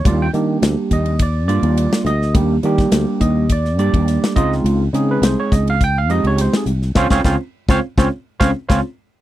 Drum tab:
RD |x-x-x-xxx-xxx-x-|x-xxx-x-x-xxx-x-|x-x-x-xxx-xxx-x-|----------------|
HH |p-p-p-p-p-p-p-p-|p-p-p-p-p-p-p-p-|p-p-p-p-p-p-p-p-|----------------|
SD |----o--------o-o|---oo----o--oo-o|----o-o-----oo-o|ooo--o-o--o-o---|
BD |o-----o-o-------|o--o--o-o--o--o-|------o-o-------|ooo--o-o--o-o---|